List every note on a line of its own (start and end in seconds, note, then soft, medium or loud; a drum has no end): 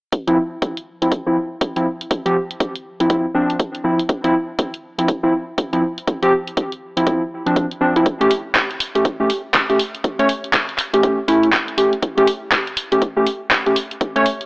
0.12 kick loud
0.12 closed hi-hat medium
0.27 0.38 F3 medium
0.27 0.38 C4 medium
0.27 0.38 E4 medium
0.27 closed hi-hat soft
0.62 kick loud
0.62 closed hi-hat medium
0.77 closed hi-hat soft
1.02 1.12 F3 medium
1.02 1.12 C4 medium
1.02 1.12 E4 medium
1.02 closed hi-hat soft
1.12 kick loud
1.12 closed hi-hat medium
1.26 1.37 F3 medium
1.26 1.37 C4 medium
1.26 1.37 E4 medium
1.61 kick loud
1.61 closed hi-hat medium
1.76 1.86 F3 medium
1.76 1.86 C4 medium
1.76 1.87 E4 medium
1.76 closed hi-hat soft
2.01 closed hi-hat soft
2.11 kick loud
2.11 closed hi-hat medium
2.26 2.36 F3 medium
2.26 2.36 C4 medium
2.26 2.36 G4 loud
2.26 closed hi-hat soft
2.51 closed hi-hat soft
2.60 kick loud
2.60 closed hi-hat medium
2.75 closed hi-hat soft
3.00 3.08 F3 medium
3.00 3.09 C4 medium
3.00 3.09 E4 medium
3.00 closed hi-hat soft
3.10 3.25 F3 medium
3.10 3.25 C4 medium
3.10 3.26 E4 medium
3.10 kick loud
3.10 closed hi-hat medium
3.35 3.56 F3 medium
3.35 3.56 C4 medium
3.35 3.56 D4 medium
3.50 closed hi-hat soft
3.60 kick loud
3.60 closed hi-hat medium
3.75 closed hi-hat soft
3.84 4.00 F3 medium
3.84 4.00 C4 medium
3.84 4.00 E4 medium
3.99 closed hi-hat soft
4.09 kick loud
4.09 closed hi-hat medium
4.24 4.34 F3 medium
4.24 4.34 C4 medium
4.24 4.35 E4 medium
4.24 closed hi-hat soft
4.59 kick loud
4.59 closed hi-hat medium
4.74 closed hi-hat soft
4.98 5.09 F3 medium
4.98 5.09 C4 medium
4.98 5.09 E4 medium
4.98 closed hi-hat soft
5.08 kick loud
5.08 closed hi-hat medium
5.23 5.33 F3 medium
5.23 5.34 C4 medium
5.23 5.34 E4 medium
5.58 kick loud
5.58 closed hi-hat medium
5.73 5.83 F3 medium
5.73 5.83 C4 medium
5.73 5.83 E4 medium
5.73 closed hi-hat soft
5.98 closed hi-hat soft
6.07 kick loud
6.07 closed hi-hat medium
6.22 6.33 F3 medium
6.22 6.33 C4 medium
6.22 6.33 G4 loud
6.22 closed hi-hat soft
6.47 closed hi-hat soft
6.57 kick loud
6.57 closed hi-hat medium
6.72 closed hi-hat soft
6.97 7.05 F3 medium
6.97 7.05 C4 medium
6.97 7.05 E4 medium
6.97 closed hi-hat soft
7.06 7.22 F3 medium
7.06 7.22 C4 medium
7.06 7.22 E4 medium
7.06 kick loud
7.06 closed hi-hat medium
7.46 7.66 F3 medium
7.46 7.66 C4 medium
7.46 7.66 D4 medium
7.46 closed hi-hat soft
7.56 kick loud
7.56 closed hi-hat medium
7.71 closed hi-hat soft
7.81 7.94 F3 medium
7.81 7.94 C4 medium
7.81 7.94 D4 medium
7.96 8.05 F3 medium
7.96 8.05 C4 medium
7.96 8.05 E4 medium
7.96 closed hi-hat soft
8.06 kick loud
8.06 closed hi-hat medium
8.21 8.31 A3 medium
8.21 8.31 C#4 medium
8.21 8.31 G4 loud
8.21 closed hi-hat soft
8.31 open hi-hat loud
8.55 kick loud
8.55 clap loud
8.55 closed hi-hat medium
8.71 closed hi-hat soft
8.80 open hi-hat loud
8.95 9.05 A3 medium
8.95 9.05 C#4 medium
8.95 9.06 G4 medium
8.95 closed hi-hat soft
9.05 kick loud
9.05 closed hi-hat medium
9.20 9.30 A3 medium
9.20 9.30 C#4 medium
9.20 9.30 G4 medium
9.30 open hi-hat loud
9.54 kick loud
9.54 clap loud
9.54 closed hi-hat medium
9.69 9.80 A3 medium
9.69 9.80 C#4 medium
9.69 9.80 G4 medium
9.69 closed hi-hat soft
9.79 open hi-hat loud
9.95 closed hi-hat soft
10.04 kick loud
10.04 closed hi-hat medium
10.19 10.29 A3 medium
10.19 10.29 C#4 medium
10.19 10.30 C#5 loud
10.19 closed hi-hat soft
10.29 open hi-hat loud
10.44 closed hi-hat soft
10.53 kick loud
10.53 clap loud
10.53 closed hi-hat medium
10.69 closed hi-hat soft
10.78 clap soft
10.78 open hi-hat medium
10.93 11.02 A3 medium
10.93 11.02 C#4 medium
10.93 11.02 G4 medium
10.93 closed hi-hat soft
11.03 11.19 A3 medium
11.03 11.19 C#4 medium
11.03 11.19 G4 medium
11.03 kick loud
11.03 closed hi-hat medium
11.28 11.49 A3 medium
11.28 11.50 C#4 medium
11.28 11.50 E4 medium
11.28 open hi-hat medium
11.43 closed hi-hat soft
11.52 kick loud
11.52 clap loud
11.52 closed hi-hat medium
11.68 closed hi-hat soft
11.77 11.93 A3 medium
11.77 11.93 C#4 medium
11.77 11.93 G4 medium
11.77 open hi-hat medium
11.93 closed hi-hat soft
12.02 kick loud
12.02 closed hi-hat medium
12.17 12.28 A3 medium
12.17 12.28 C#4 medium
12.17 12.28 G4 loud
12.17 closed hi-hat soft
12.27 open hi-hat loud
12.52 kick loud
12.52 clap loud
12.52 closed hi-hat medium
12.67 closed hi-hat soft
12.77 open hi-hat loud
12.92 13.02 A3 medium
12.92 13.02 C#4 medium
12.92 13.02 G4 medium
12.92 closed hi-hat medium
13.02 kick loud
13.02 closed hi-hat medium
13.17 13.27 A3 medium
13.17 13.27 C#4 medium
13.17 13.27 G4 medium
13.27 open hi-hat medium
13.51 kick loud
13.51 clap loud
13.51 closed hi-hat medium
13.66 13.76 A3 medium
13.66 13.77 C#4 medium
13.66 13.77 G4 medium
13.66 closed hi-hat soft
13.76 open hi-hat medium
13.91 closed hi-hat soft
14.01 kick loud
14.01 closed hi-hat medium
14.16 14.26 A3 medium
14.16 14.26 C#4 medium
14.16 14.26 C#5 loud
14.16 closed hi-hat medium
14.26 open hi-hat medium
14.41 closed hi-hat soft